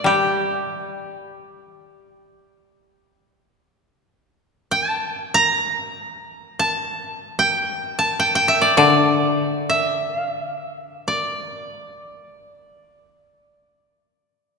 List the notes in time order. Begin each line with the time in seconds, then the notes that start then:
Already playing: D5 E5
0.04 G3 G4
4.71 G5
4.88 A5
5.34 A#5
6.59 A5
7.39 G5
7.99 A5
8.20 G5
8.35 G5
8.48 E5
8.62 D5
8.77 D3 D5
9.70 E5
10.18 F5
10.29 E5
10.44 F5
10.56 E5
11.08 D5